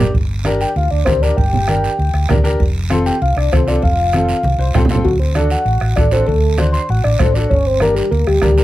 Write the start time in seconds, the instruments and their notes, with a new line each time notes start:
Already playing: clarinet G4
0.14 fingered electric bass G1, bombo low, high conga, long guiro
0.44 upright piano D4 G4 A#4, bombo rim, high conga, short guiro
0.61 soft synth lead G5, short guiro
0.76 fingered electric bass D2, soft synth lead F5, high conga, long guiro
0.91 fingered electric bass D2, soft synth lead D5
1.05 fingered electric bass D2, upright piano D4 G4 A#4, soft synth lead C5, bombo low, bombo rim, high conga, short guiro
1.22 upright piano D4 G4 A#4, soft synth lead D5, short guiro
1.37 fingered electric bass G1, soft synth lead G5, bombo low, high conga, long guiro
1.53 low conga
1.67 upright piano D4 G4 A#4, bombo rim, high conga, short guiro
1.84 short guiro
1.98 fingered electric bass D2, high conga, long guiro
2.13 fingered electric bass D2, bombo rim
2.29 fingered electric bass D2, upright piano D4 G4 A#4, bombo low, bombo rim, high conga, low conga, short guiro
2.43 upright piano D4 G4 A#4, short guiro
2.60 fingered electric bass F1, bombo low, high conga, long guiro
2.90 upright piano C4 F4 A4, bombo rim, high conga, short guiro
3.06 soft synth lead G5, short guiro
3.21 fingered electric bass C2, soft synth lead F5, high conga, long guiro
3.36 fingered electric bass C2, soft synth lead D5, bombo rim
3.52 fingered electric bass C2, upright piano C4 F4 A4, soft synth lead C5, bombo low, bombo rim, high conga, short guiro
3.67 upright piano C4 F4 A4, soft synth lead D5, short guiro
3.82 fingered electric bass F1, soft synth lead F5, bombo low, high conga, long guiro
4.13 upright piano C4 F4 A4, bombo rim, high conga, short guiro
4.29 short guiro
4.43 fingered electric bass C2, high conga, long guiro
4.58 fingered electric bass C2, upright piano C5
4.74 fingered electric bass C2, upright piano C4 F4 A4 G5, bombo low, bombo rim, low conga, short guiro
4.85 low conga
4.89 upright piano C4 F4 A4, short guiro
4.95 low conga
5.04 fingered electric bass D2, soft synth lead F#4, bombo low, long guiro
5.20 soft synth lead C5
5.35 upright piano D4 F#4 A4, soft synth lead D5, bombo rim, high conga, short guiro
5.50 soft synth lead F#5, short guiro
5.65 fingered electric bass A1, high conga, long guiro
5.81 fingered electric bass A1, bombo rim
5.96 fingered electric bass A1, upright piano D4 F#4 A4, soft synth lead D5, bombo low, bombo rim, high conga, short guiro
6.11 upright piano D4 F#4 A4, soft synth lead C5, short guiro
6.26 fingered electric bass D2, soft synth lead A4, bombo low, high conga, long guiro
6.57 upright piano D4 F#4 C5, bombo rim, high conga, short guiro
6.72 soft synth lead C6, short guiro
6.89 fingered electric bass A1, soft synth lead F#5, high conga, long guiro
7.04 fingered electric bass A1, soft synth lead D5, bombo rim
7.19 fingered electric bass A1, upright piano D4 F#4 A4, soft synth lead C5, bombo low, bombo rim, high conga, low conga, short guiro
7.34 upright piano D4 F#4 A4, soft synth lead D5, short guiro
7.49 fingered electric bass G1, soft synth lead C#5, bombo low, high conga, long guiro
7.67 soft synth lead C5
7.80 upright piano D4 G4 A#4, soft synth lead A#4, bombo rim, high conga, short guiro
7.95 soft synth lead G4, short guiro
8.11 fingered electric bass D2, soft synth lead A#4, high conga, long guiro
8.27 fingered electric bass D2, soft synth lead G4, bombo rim
8.41 fingered electric bass D2, upright piano D4 G4 A#4, soft synth lead G4, bombo low, bombo rim, high conga, short guiro
8.57 upright piano D4 G4 A#4, short guiro